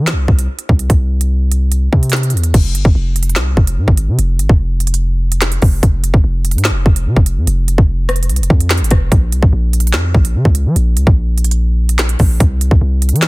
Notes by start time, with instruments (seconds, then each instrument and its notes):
Already playing: 808-style bass E3
0.07 snare, clap, closed hi-hat
0.13 808-style bass C2
0.28 808-style bass C2, kick
0.39 closed hi-hat
0.59 closed hi-hat
0.69 808-style bass C2, kick
0.79 closed hi-hat
0.90 808-style bass C2, kick, closed hi-hat
1.21 closed hi-hat
1.52 closed hi-hat
1.72 closed hi-hat
1.93 808-style bass C3, kick
2.03 closed hi-hat
2.10 snare, clap, closed hi-hat
2.16 closed hi-hat
2.23 closed hi-hat
2.30 808-style bass E2, closed hi-hat
2.37 closed hi-hat
2.44 closed hi-hat
2.54 808-style bass F1, kick, closed hi-hat, crash
2.75 808-style bass G1, closed hi-hat
2.85 808-style bass F1, kick
2.95 808-style bass F1
3.16 closed hi-hat
3.23 closed hi-hat
3.29 closed hi-hat
3.36 808-style bass C2, snare, clap
3.57 808-style bass F1, kick
3.67 closed hi-hat
3.77 808-style bass G#2
3.88 808-style bass G#1, kick
3.97 closed hi-hat
4.08 808-style bass C3
4.19 808-style bass F1, closed hi-hat
4.39 808-style bass G#1, closed hi-hat
4.49 808-style bass F1, kick
4.80 closed hi-hat
4.87 closed hi-hat
4.94 closed hi-hat
5.32 closed hi-hat
5.42 snare, clap, closed hi-hat
5.52 closed hi-hat
5.62 808-style bass F1, kick, open hi-hat
5.83 808-style bass F1, kick, closed hi-hat
6.04 closed hi-hat
6.14 808-style bass F1, kick
6.24 808-style bass F1
6.45 closed hi-hat
6.51 808-style bass G#2, closed hi-hat
6.58 closed hi-hat
6.65 snare, clap
6.70 808-style bass F1
6.86 808-style bass F1, kick
6.96 closed hi-hat
7.06 808-style bass C3
7.16 808-style bass F1, kick
7.26 closed hi-hat
7.37 808-style bass F2
7.47 808-style bass F1, closed hi-hat
7.68 closed hi-hat
7.78 808-style bass F1, kick
8.09 cross-stick, closed hi-hat
8.16 closed hi-hat
8.23 closed hi-hat
8.29 808-style bass C2, closed hi-hat
8.36 808-style bass F1, closed hi-hat
8.43 closed hi-hat
8.50 808-style bass F2, kick
8.60 closed hi-hat
8.70 snare, clap, closed hi-hat
8.78 808-style bass G#1, closed hi-hat
8.84 closed hi-hat
8.91 808-style bass F1, kick, cross-stick, closed hi-hat
9.12 808-style bass A#1, kick, closed hi-hat
9.32 808-style bass C2, closed hi-hat
9.43 808-style bass A#1, kick
9.53 808-style bass A#1
9.73 closed hi-hat
9.80 closed hi-hat
9.87 closed hi-hat
9.93 808-style bass F2, snare, clap
10.14 808-style bass A#1, kick
10.25 closed hi-hat
10.35 808-style bass C#3
10.45 808-style bass C#2, kick
10.55 closed hi-hat
10.66 808-style bass F3
10.76 808-style bass A#1, closed hi-hat
10.97 808-style bass C#2, closed hi-hat
11.07 808-style bass A#1, kick
11.38 closed hi-hat
11.44 closed hi-hat
11.51 closed hi-hat
11.89 closed hi-hat
11.99 snare, clap, closed hi-hat
12.09 closed hi-hat
12.19 808-style bass A#1, kick, open hi-hat
12.40 808-style bass C2, kick, closed hi-hat
12.61 closed hi-hat
12.71 808-style bass C2, kick
12.81 808-style bass C2
13.02 closed hi-hat
13.09 808-style bass E3, closed hi-hat
13.16 closed hi-hat
13.22 snare, clap